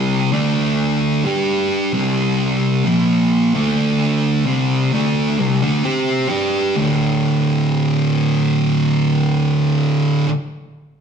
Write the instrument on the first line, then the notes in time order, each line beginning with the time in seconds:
distorted electric guitar
Already playing: C3 G3 C4
0.32 D3 A3 D4
1.25 G3 D4 G4
1.92 C3 G3 C4
2.85 A#2 F3 A#3
3.54 D3 A3 D4
4.45 C3 G3 C4
4.92 D3 A3 D4
5.38 C3 G3
5.62 D3 A3
5.85 C4 G4 C5
6.29 G3 D4 G4
6.76 D2 A2 D3